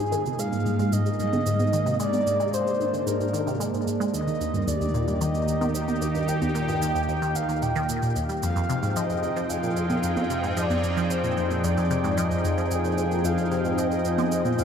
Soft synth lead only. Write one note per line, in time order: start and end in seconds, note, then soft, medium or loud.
0.00 0.41 G#4 loud
0.39 0.94 F5 loud
0.93 1.19 D#5 loud
1.20 1.96 D#5 loud
2.00 2.55 D5 loud
2.54 3.09 C5 loud
3.07 3.87 A#4 medium
4.14 4.69 D#5 loud
4.68 5.22 D5 medium
5.21 5.74 D#5 loud
5.75 6.30 D#5 loud
6.28 7.08 G5 loud
7.09 7.37 G5 loud
7.35 7.64 F5 loud
7.62 8.16 G5 loud
8.43 8.98 F5 loud
8.96 9.51 D#5 loud
9.50 10.58 F5 loud
10.57 11.03 D5 loud
11.03 11.12 D5 medium
11.10 11.63 C5 loud
11.64 12.19 D5 loud
12.17 12.58 D#5 loud
12.71 13.26 G#4 loud
13.25 13.80 F5 loud
13.78 14.60 D#5 loud
14.59 14.64 F5 loud